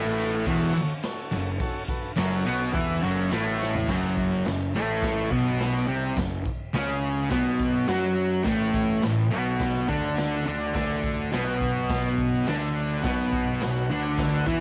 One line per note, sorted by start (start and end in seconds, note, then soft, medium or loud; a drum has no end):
0.00 0.43 A1 loud
0.00 0.46 A2 medium
0.00 0.46 A3 loud
0.00 0.37 F#4 medium
0.00 0.37 A4 medium
0.00 0.38 B4 medium
0.05 tambourine soft
0.18 ride medium
0.18 tambourine medium
0.33 tambourine soft
0.46 0.73 E1 loud
0.46 0.74 E2 medium
0.46 0.75 E3 loud
0.46 0.93 F#4 medium
0.46 0.94 A4 medium
0.46 0.94 C#5 medium
0.46 kick loud
0.46 ride loud
0.61 tambourine medium
0.74 muted distorted electric guitar stroke medium
0.74 muted picked electric bass stroke soft
0.74 ride medium
0.74 tambourine medium
0.89 tambourine soft
1.02 1.50 F#4 medium
1.02 1.50 A4 medium
1.02 1.51 C#5 medium
1.02 snare loud
1.02 ride loud
1.02 tambourine medium
1.32 1.59 F#1 medium
1.32 1.55 F#2 medium
1.32 ride medium
1.32 tambourine medium
1.46 tambourine soft
1.60 1.84 F#4 loud
1.60 1.84 A4 loud
1.60 1.84 C#5 loud
1.60 kick loud
1.60 ride loud
1.60 tambourine soft
1.88 2.12 F#4 medium
1.88 2.12 A4 medium
1.88 2.12 B4 medium
1.88 kick loud
1.88 ride medium
1.88 tambourine soft
2.03 tambourine soft
2.16 2.44 F#1 loud
2.16 2.44 F#2 medium
2.16 2.45 F#3 medium
2.16 2.64 F#4 medium
2.16 2.63 A4 medium
2.16 2.64 C#5 medium
2.16 snare loud
2.16 ride loud
2.16 tambourine medium
2.32 tambourine soft
2.45 2.73 B1 medium
2.45 2.73 B2 medium
2.45 2.73 B3 loud
2.45 ride medium
2.45 tambourine medium
2.59 tambourine soft
2.73 3.01 E2 medium
2.73 3.02 E3 medium
2.73 3.02 E4 loud
2.73 3.20 F#4 medium
2.73 3.20 A4 medium
2.73 3.20 E5 medium
2.73 kick loud
2.73 ride loud
2.73 tambourine soft
2.87 tambourine medium
3.02 3.30 F#1 medium
3.02 3.30 F#2 medium
3.02 3.31 F#3 loud
3.02 ride medium
3.02 tambourine medium
3.16 tambourine soft
3.30 3.85 A1 medium
3.30 3.88 A2 medium
3.30 3.88 A3 loud
3.30 3.77 F#4 medium
3.30 3.77 A4 medium
3.30 3.77 C#5 medium
3.30 snare loud
3.30 ride medium
3.30 tambourine medium
3.45 tambourine soft
3.59 snare medium
3.59 tambourine medium
3.74 floor tom medium
3.74 tambourine soft
3.88 4.42 F#1 loud
3.88 4.45 F#2 medium
3.88 4.45 F#3 medium
3.88 kick loud
3.88 snare loud
3.88 crash loud
3.88 tambourine medium
3.88 crash medium
4.17 kick medium
4.17 tambourine medium
4.45 4.73 F#1 medium
4.45 4.69 F#2 medium
4.45 snare loud
4.45 tambourine loud
4.45 crash medium
4.74 5.28 A1 medium
4.74 5.31 A2 medium
4.74 5.31 A3 loud
4.74 tambourine medium
5.02 kick loud
5.02 snare loud
5.02 crash medium
5.31 5.85 B1 medium
5.31 5.87 B2 loud
5.31 5.88 B3 loud
5.31 kick medium
5.59 snare loud
5.59 tambourine loud
5.59 crash medium
5.87 6.15 C2 medium
5.87 6.16 C3 medium
5.87 6.16 C4 loud
5.87 tambourine medium
6.17 6.44 F#1 medium
6.17 6.40 F#2 medium
6.17 kick loud
6.17 snare loud
6.17 tambourine medium
6.17 crash medium
6.45 kick medium
6.45 tambourine medium
6.74 7.28 C#2 loud
6.74 7.30 C#3 medium
6.74 7.31 C#4 loud
6.74 snare loud
6.74 tambourine medium
6.74 crash medium
7.03 tambourine medium
7.30 7.85 B1 loud
7.30 7.87 B2 medium
7.30 7.88 B3 loud
7.30 kick loud
7.30 snare loud
7.30 crash medium
7.59 kick medium
7.59 tambourine soft
7.88 8.42 F#2 medium
7.88 8.43 F#3 medium
7.88 8.45 F#4 loud
7.88 snare loud
7.88 tambourine loud
7.88 crash medium
8.17 tambourine medium
8.44 8.99 A1 loud
8.44 9.01 A2 medium
8.44 9.02 A3 loud
8.44 kick loud
8.44 snare loud
8.44 tambourine medium
8.44 crash medium
8.74 kick medium
8.74 tambourine medium
9.02 9.30 A1 medium
9.02 9.26 A2 medium
9.02 snare loud
9.02 tambourine loud
9.02 crash medium
9.31 9.86 B1 medium
9.31 9.88 B2 medium
9.31 9.89 B3 loud
9.59 kick loud
9.59 snare loud
9.59 crash medium
9.89 10.43 D2 loud
9.89 10.45 D3 medium
9.89 10.46 D4 loud
9.89 kick medium
10.17 snare loud
10.17 tambourine loud
10.17 crash medium
10.46 10.74 D2 loud
10.46 10.74 D3 medium
10.46 10.75 D4 loud
10.46 tambourine medium
10.75 11.29 D2 loud
10.75 11.32 D3 medium
10.75 11.32 D4 loud
10.75 kick loud
10.75 snare loud
10.75 tambourine medium
10.75 crash medium
11.04 kick loud
11.04 tambourine medium
11.32 12.44 B1 medium
11.32 12.46 B2 medium
11.32 12.47 B3 loud
11.32 snare loud
11.32 tambourine loud
11.32 crash medium
11.61 kick medium
11.61 tambourine medium
11.89 kick loud
11.89 snare loud
11.89 tambourine soft
11.89 crash medium
12.18 kick medium
12.18 tambourine soft
12.46 13.01 D2 medium
12.46 13.03 D3 loud
12.46 13.04 D4 loud
12.46 snare loud
12.46 tambourine medium
12.46 crash medium
12.76 tambourine medium
13.01 13.60 B2 medium
13.01 13.61 B3 medium
13.01 13.49 F#4 medium
13.01 13.50 B4 medium
13.01 13.50 F#5 loud
13.01 kick loud
13.01 tambourine medium
13.01 crash medium
13.05 13.58 B1 medium
13.05 snare loud
13.33 kick loud
13.33 tambourine medium
13.60 13.89 B1 medium
13.60 13.85 B2 medium
13.60 14.07 F#4 medium
13.60 14.07 B4 medium
13.60 14.08 F#5 loud
13.60 snare loud
13.60 tambourine medium
13.60 crash medium
13.90 14.44 D2 medium
13.90 14.46 D3 medium
13.90 14.47 D4 loud
13.90 tambourine medium
14.18 14.60 F#4 medium
14.18 14.60 B4 medium
14.18 14.60 E5 medium
14.18 kick loud
14.18 snare loud
14.18 crash medium
14.47 14.60 E2 medium
14.47 14.60 E3 loud
14.47 14.60 E4 loud
14.47 kick medium
14.47 tambourine soft